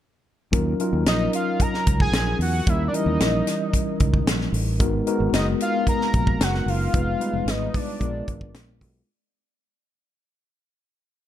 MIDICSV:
0, 0, Header, 1, 5, 480
1, 0, Start_track
1, 0, Key_signature, -6, "minor"
1, 0, Tempo, 534283
1, 480, Time_signature, 4, 2, 24, 8
1, 10131, End_track
2, 0, Start_track
2, 0, Title_t, "Analog synth lead"
2, 0, Program_c, 0, 81
2, 969, Note_on_c, 0, 75, 94
2, 1188, Note_off_c, 0, 75, 0
2, 1214, Note_on_c, 0, 77, 92
2, 1449, Note_on_c, 0, 82, 109
2, 1462, Note_off_c, 0, 77, 0
2, 1804, Note_off_c, 0, 82, 0
2, 1810, Note_on_c, 0, 80, 90
2, 2140, Note_off_c, 0, 80, 0
2, 2175, Note_on_c, 0, 78, 94
2, 2418, Note_on_c, 0, 76, 86
2, 2431, Note_off_c, 0, 78, 0
2, 2583, Note_off_c, 0, 76, 0
2, 2588, Note_on_c, 0, 74, 60
2, 2641, Note_on_c, 0, 75, 79
2, 2655, Note_off_c, 0, 74, 0
2, 3599, Note_off_c, 0, 75, 0
2, 4803, Note_on_c, 0, 75, 90
2, 4910, Note_off_c, 0, 75, 0
2, 5049, Note_on_c, 0, 77, 94
2, 5266, Note_off_c, 0, 77, 0
2, 5290, Note_on_c, 0, 82, 101
2, 5775, Note_on_c, 0, 78, 89
2, 5789, Note_off_c, 0, 82, 0
2, 6012, Note_on_c, 0, 77, 98
2, 6025, Note_off_c, 0, 78, 0
2, 6736, Note_on_c, 0, 75, 83
2, 6749, Note_off_c, 0, 77, 0
2, 6971, Note_on_c, 0, 74, 77
2, 6985, Note_off_c, 0, 75, 0
2, 7683, Note_off_c, 0, 74, 0
2, 10131, End_track
3, 0, Start_track
3, 0, Title_t, "Tine electric piano"
3, 0, Program_c, 1, 4
3, 465, Note_on_c, 1, 54, 75
3, 465, Note_on_c, 1, 61, 70
3, 470, Note_on_c, 1, 63, 73
3, 474, Note_on_c, 1, 65, 70
3, 477, Note_on_c, 1, 70, 90
3, 652, Control_c, 1, 64, 127
3, 662, Note_off_c, 1, 54, 0
3, 662, Note_off_c, 1, 61, 0
3, 664, Note_off_c, 1, 63, 0
3, 666, Note_off_c, 1, 65, 0
3, 668, Note_off_c, 1, 70, 0
3, 718, Note_on_c, 1, 54, 75
3, 718, Note_on_c, 1, 61, 73
3, 723, Note_on_c, 1, 63, 81
3, 724, Note_on_c, 1, 65, 80
3, 727, Note_on_c, 1, 70, 92
3, 1477, Note_off_c, 1, 54, 0
3, 1477, Note_off_c, 1, 61, 0
3, 1479, Note_off_c, 1, 63, 0
3, 1480, Note_off_c, 1, 65, 0
3, 1481, Note_off_c, 1, 70, 0
3, 2395, Note_on_c, 1, 55, 66
3, 2398, Note_on_c, 1, 61, 59
3, 2400, Note_on_c, 1, 63, 63
3, 2403, Note_on_c, 1, 64, 57
3, 2409, Note_on_c, 1, 70, 74
3, 2410, Control_c, 1, 64, 0
3, 2544, Control_c, 1, 64, 127
3, 2586, Note_off_c, 1, 55, 0
3, 2588, Note_off_c, 1, 61, 0
3, 2589, Note_off_c, 1, 63, 0
3, 2590, Note_off_c, 1, 64, 0
3, 2593, Note_off_c, 1, 70, 0
3, 2630, Note_on_c, 1, 52, 56
3, 2635, Note_on_c, 1, 61, 61
3, 2635, Note_on_c, 1, 63, 69
3, 2638, Note_on_c, 1, 64, 68
3, 2645, Note_on_c, 1, 70, 82
3, 2688, Note_on_c, 1, 55, 70
3, 2692, Note_off_c, 1, 52, 0
3, 3394, Note_off_c, 1, 61, 0
3, 3394, Note_off_c, 1, 63, 0
3, 3395, Note_off_c, 1, 64, 0
3, 3399, Note_off_c, 1, 70, 0
3, 3421, Note_off_c, 1, 55, 0
3, 4305, Note_on_c, 1, 56, 83
3, 4308, Note_on_c, 1, 59, 76
3, 4310, Note_on_c, 1, 63, 68
3, 4314, Note_on_c, 1, 66, 77
3, 4319, Note_on_c, 1, 70, 85
3, 4327, Control_c, 1, 64, 0
3, 4466, Control_c, 1, 64, 127
3, 4500, Note_off_c, 1, 56, 0
3, 4502, Note_off_c, 1, 59, 0
3, 4502, Note_off_c, 1, 63, 0
3, 4504, Note_off_c, 1, 66, 0
3, 4507, Note_off_c, 1, 70, 0
3, 4550, Note_on_c, 1, 56, 83
3, 4553, Note_on_c, 1, 59, 86
3, 4555, Note_on_c, 1, 63, 79
3, 4560, Note_on_c, 1, 70, 96
3, 4562, Note_on_c, 1, 66, 86
3, 5310, Note_off_c, 1, 56, 0
3, 5312, Note_off_c, 1, 59, 0
3, 5313, Note_off_c, 1, 63, 0
3, 5315, Note_off_c, 1, 70, 0
3, 5316, Note_off_c, 1, 66, 0
3, 6234, Note_on_c, 1, 56, 66
3, 6235, Note_on_c, 1, 59, 62
3, 6236, Note_on_c, 1, 63, 68
3, 6240, Note_on_c, 1, 65, 64
3, 6243, Note_on_c, 1, 71, 75
3, 6246, Control_c, 1, 64, 0
3, 6423, Note_off_c, 1, 56, 0
3, 6424, Note_off_c, 1, 59, 0
3, 6425, Note_off_c, 1, 63, 0
3, 6427, Note_off_c, 1, 65, 0
3, 6428, Note_off_c, 1, 71, 0
3, 6428, Control_c, 1, 64, 127
3, 6468, Note_on_c, 1, 55, 61
3, 6471, Note_on_c, 1, 59, 64
3, 6475, Note_on_c, 1, 63, 64
3, 6475, Note_on_c, 1, 65, 60
3, 6482, Note_on_c, 1, 71, 84
3, 6525, Note_on_c, 1, 56, 72
3, 6529, Note_off_c, 1, 55, 0
3, 7171, Note_off_c, 1, 56, 0
3, 7175, Note_off_c, 1, 59, 0
3, 7181, Note_off_c, 1, 65, 0
3, 7182, Note_on_c, 1, 56, 72
3, 7186, Note_on_c, 1, 59, 68
3, 7186, Note_on_c, 1, 62, 72
3, 7191, Note_on_c, 1, 70, 77
3, 7192, Note_on_c, 1, 65, 65
3, 7194, Note_off_c, 1, 63, 0
3, 7198, Note_off_c, 1, 71, 0
3, 7207, Control_c, 1, 64, 0
3, 7378, Control_c, 1, 64, 127
3, 7956, Note_off_c, 1, 56, 0
3, 7958, Note_off_c, 1, 59, 0
3, 7958, Note_off_c, 1, 62, 0
3, 7961, Note_off_c, 1, 65, 0
3, 7961, Note_off_c, 1, 70, 0
3, 8165, Control_c, 1, 64, 0
3, 10131, End_track
4, 0, Start_track
4, 0, Title_t, "Fretless electric bass"
4, 0, Program_c, 2, 35
4, 471, Note_on_c, 2, 39, 91
4, 657, Note_off_c, 2, 39, 0
4, 834, Note_on_c, 2, 39, 90
4, 928, Note_off_c, 2, 39, 0
4, 952, Note_on_c, 2, 34, 84
4, 1138, Note_off_c, 2, 34, 0
4, 1679, Note_on_c, 2, 37, 81
4, 1862, Note_off_c, 2, 37, 0
4, 1903, Note_on_c, 2, 34, 72
4, 2092, Note_off_c, 2, 34, 0
4, 2146, Note_on_c, 2, 40, 85
4, 2334, Note_off_c, 2, 40, 0
4, 2395, Note_on_c, 2, 39, 83
4, 2579, Note_off_c, 2, 39, 0
4, 2750, Note_on_c, 2, 39, 95
4, 2844, Note_off_c, 2, 39, 0
4, 2875, Note_on_c, 2, 34, 83
4, 3059, Note_off_c, 2, 34, 0
4, 3595, Note_on_c, 2, 37, 91
4, 3778, Note_off_c, 2, 37, 0
4, 3828, Note_on_c, 2, 34, 65
4, 4014, Note_off_c, 2, 34, 0
4, 4065, Note_on_c, 2, 33, 87
4, 4311, Note_off_c, 2, 33, 0
4, 4311, Note_on_c, 2, 32, 95
4, 4496, Note_off_c, 2, 32, 0
4, 4672, Note_on_c, 2, 32, 94
4, 4765, Note_off_c, 2, 32, 0
4, 4787, Note_on_c, 2, 30, 89
4, 4973, Note_off_c, 2, 30, 0
4, 5515, Note_on_c, 2, 34, 85
4, 5698, Note_off_c, 2, 34, 0
4, 5743, Note_on_c, 2, 30, 77
4, 5930, Note_off_c, 2, 30, 0
4, 5984, Note_on_c, 2, 30, 77
4, 6170, Note_off_c, 2, 30, 0
4, 6232, Note_on_c, 2, 29, 84
4, 6416, Note_off_c, 2, 29, 0
4, 6588, Note_on_c, 2, 29, 84
4, 6682, Note_off_c, 2, 29, 0
4, 6700, Note_on_c, 2, 32, 87
4, 6888, Note_off_c, 2, 32, 0
4, 7192, Note_on_c, 2, 34, 97
4, 7375, Note_off_c, 2, 34, 0
4, 7434, Note_on_c, 2, 32, 84
4, 7678, Note_off_c, 2, 32, 0
4, 7678, Note_on_c, 2, 34, 81
4, 7915, Note_off_c, 2, 34, 0
4, 7915, Note_on_c, 2, 35, 83
4, 8098, Note_off_c, 2, 35, 0
4, 10131, End_track
5, 0, Start_track
5, 0, Title_t, "Drums"
5, 475, Note_on_c, 9, 42, 80
5, 476, Note_on_c, 9, 36, 106
5, 565, Note_off_c, 9, 42, 0
5, 566, Note_off_c, 9, 36, 0
5, 715, Note_on_c, 9, 42, 60
5, 805, Note_off_c, 9, 42, 0
5, 954, Note_on_c, 9, 42, 74
5, 957, Note_on_c, 9, 38, 92
5, 1044, Note_off_c, 9, 42, 0
5, 1047, Note_off_c, 9, 38, 0
5, 1196, Note_on_c, 9, 42, 80
5, 1286, Note_off_c, 9, 42, 0
5, 1436, Note_on_c, 9, 36, 69
5, 1437, Note_on_c, 9, 42, 75
5, 1526, Note_off_c, 9, 36, 0
5, 1527, Note_off_c, 9, 42, 0
5, 1564, Note_on_c, 9, 38, 35
5, 1654, Note_off_c, 9, 38, 0
5, 1676, Note_on_c, 9, 42, 61
5, 1681, Note_on_c, 9, 36, 86
5, 1766, Note_off_c, 9, 42, 0
5, 1770, Note_off_c, 9, 36, 0
5, 1798, Note_on_c, 9, 36, 84
5, 1888, Note_off_c, 9, 36, 0
5, 1919, Note_on_c, 9, 38, 113
5, 1919, Note_on_c, 9, 42, 85
5, 2008, Note_off_c, 9, 38, 0
5, 2009, Note_off_c, 9, 42, 0
5, 2162, Note_on_c, 9, 46, 69
5, 2252, Note_off_c, 9, 46, 0
5, 2399, Note_on_c, 9, 36, 116
5, 2399, Note_on_c, 9, 42, 81
5, 2489, Note_off_c, 9, 36, 0
5, 2489, Note_off_c, 9, 42, 0
5, 2641, Note_on_c, 9, 42, 63
5, 2731, Note_off_c, 9, 42, 0
5, 2878, Note_on_c, 9, 42, 84
5, 2881, Note_on_c, 9, 38, 81
5, 2968, Note_off_c, 9, 42, 0
5, 2971, Note_off_c, 9, 38, 0
5, 3117, Note_on_c, 9, 38, 36
5, 3118, Note_on_c, 9, 42, 84
5, 3206, Note_off_c, 9, 38, 0
5, 3208, Note_off_c, 9, 42, 0
5, 3355, Note_on_c, 9, 36, 66
5, 3356, Note_on_c, 9, 42, 77
5, 3445, Note_off_c, 9, 36, 0
5, 3446, Note_off_c, 9, 42, 0
5, 3592, Note_on_c, 9, 42, 58
5, 3598, Note_on_c, 9, 36, 85
5, 3682, Note_off_c, 9, 42, 0
5, 3688, Note_off_c, 9, 36, 0
5, 3715, Note_on_c, 9, 36, 78
5, 3805, Note_off_c, 9, 36, 0
5, 3840, Note_on_c, 9, 38, 122
5, 3840, Note_on_c, 9, 42, 94
5, 3930, Note_off_c, 9, 38, 0
5, 3930, Note_off_c, 9, 42, 0
5, 3961, Note_on_c, 9, 38, 28
5, 4051, Note_off_c, 9, 38, 0
5, 4077, Note_on_c, 9, 46, 63
5, 4167, Note_off_c, 9, 46, 0
5, 4310, Note_on_c, 9, 42, 85
5, 4314, Note_on_c, 9, 36, 106
5, 4400, Note_off_c, 9, 42, 0
5, 4404, Note_off_c, 9, 36, 0
5, 4553, Note_on_c, 9, 42, 61
5, 4642, Note_off_c, 9, 42, 0
5, 4793, Note_on_c, 9, 42, 87
5, 4796, Note_on_c, 9, 38, 95
5, 4883, Note_off_c, 9, 42, 0
5, 4886, Note_off_c, 9, 38, 0
5, 5035, Note_on_c, 9, 42, 82
5, 5125, Note_off_c, 9, 42, 0
5, 5272, Note_on_c, 9, 36, 64
5, 5272, Note_on_c, 9, 42, 69
5, 5362, Note_off_c, 9, 36, 0
5, 5362, Note_off_c, 9, 42, 0
5, 5402, Note_on_c, 9, 38, 32
5, 5492, Note_off_c, 9, 38, 0
5, 5511, Note_on_c, 9, 42, 53
5, 5516, Note_on_c, 9, 36, 90
5, 5601, Note_off_c, 9, 42, 0
5, 5606, Note_off_c, 9, 36, 0
5, 5633, Note_on_c, 9, 36, 88
5, 5723, Note_off_c, 9, 36, 0
5, 5758, Note_on_c, 9, 38, 116
5, 5758, Note_on_c, 9, 42, 89
5, 5848, Note_off_c, 9, 38, 0
5, 5848, Note_off_c, 9, 42, 0
5, 5880, Note_on_c, 9, 38, 28
5, 5970, Note_off_c, 9, 38, 0
5, 6002, Note_on_c, 9, 46, 72
5, 6092, Note_off_c, 9, 46, 0
5, 6234, Note_on_c, 9, 42, 77
5, 6235, Note_on_c, 9, 36, 117
5, 6324, Note_off_c, 9, 42, 0
5, 6325, Note_off_c, 9, 36, 0
5, 6477, Note_on_c, 9, 42, 60
5, 6567, Note_off_c, 9, 42, 0
5, 6716, Note_on_c, 9, 42, 87
5, 6719, Note_on_c, 9, 38, 90
5, 6806, Note_off_c, 9, 42, 0
5, 6809, Note_off_c, 9, 38, 0
5, 6957, Note_on_c, 9, 36, 90
5, 6962, Note_on_c, 9, 46, 78
5, 7047, Note_off_c, 9, 36, 0
5, 7052, Note_off_c, 9, 46, 0
5, 7195, Note_on_c, 9, 36, 70
5, 7197, Note_on_c, 9, 42, 70
5, 7284, Note_off_c, 9, 36, 0
5, 7286, Note_off_c, 9, 42, 0
5, 7435, Note_on_c, 9, 42, 59
5, 7438, Note_on_c, 9, 36, 86
5, 7525, Note_off_c, 9, 42, 0
5, 7528, Note_off_c, 9, 36, 0
5, 7556, Note_on_c, 9, 36, 80
5, 7645, Note_off_c, 9, 36, 0
5, 7678, Note_on_c, 9, 38, 108
5, 7678, Note_on_c, 9, 42, 98
5, 7768, Note_off_c, 9, 38, 0
5, 7768, Note_off_c, 9, 42, 0
5, 7918, Note_on_c, 9, 36, 69
5, 7919, Note_on_c, 9, 46, 70
5, 8008, Note_off_c, 9, 36, 0
5, 8009, Note_off_c, 9, 46, 0
5, 10131, End_track
0, 0, End_of_file